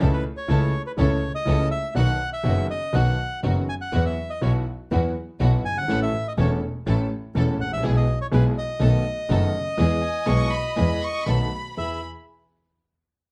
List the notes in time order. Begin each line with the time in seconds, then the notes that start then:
0.00 C#2 C#3 E3 A3 C#4 E4 A4
0.13 B4
0.37 C#5
0.48 C#2 C#3 E3 A3 C#4 E4 A4
0.87 B4
0.97 C#2 C#3 E3 A3 C#4 E4 A4 C#5
1.35 D#5
1.45 C#2 C#3 E3 A3 C#4 E4 A4
1.71 E5
1.94 B1 B2 D#3 F#3 B3 D#4 F#4 F#5
2.33 E5
2.43 F#1 F#2 D#3 F#3 B3 D#4 F#4
2.70 D#5
2.93 B1 B2 D#3 F#3 B3 D#4 F#4 F#5
3.43 F#1 F#2 D#3 F#3 B3 D#4 F#4
3.69 G#5
3.81 F#5
3.92 E2 E3 F#3 B3 E4 F#4
4.06 E5
4.30 D#5
4.41 B1 B2 E3 F#3 B3 E4 F#4 C#5
4.91 E2 E3 F#3 B3 E4 F#4
5.40 B1 B2 E3 F#3 B3 E4 F#4
5.65 G1 G#5
5.71 F#1
5.76 G1 F#5
5.83 G#1
5.88 A1 A2 E3 A3 C#4 E4 A4
6.03 E5
6.28 D#5
6.37 E1 E2 E3 A3 C#4 E4 A4 C#5
6.86 A1 A2 E3 A3 C#4 E4 A4
7.35 E1 E2 E3 A3 C#4 E4 A4
7.60 A1 F#5
7.65 G#1
7.71 A1 E5
7.78 A#1
7.83 B1 B2 E3 G#3 B3 E4 G#4
7.97 D#5
8.21 C#5
8.31 B1 B2 E3 G#3 B3 E4 G#4 B4
8.58 D#5
8.80 B1 B2 D#3 A3 B3 D#4 F#4 A4
9.29 F#1 F#2 D#3 A3 B3 D#4 F#4 A4
9.77 E2 E3 G#3 B3 E4 G#4
10.02 G#5
10.26 B1 B2 E3 G#3 B3 E4 G#4 C#6
10.52 B5
10.76 E2 E3 G#3 B3 E4 G#4 B5
11.02 C#6
11.26 B1 B2 D#3 A3 B3 D#4 F#4 A4 B5
11.77 E2 B3 E4 G#4 E5 B5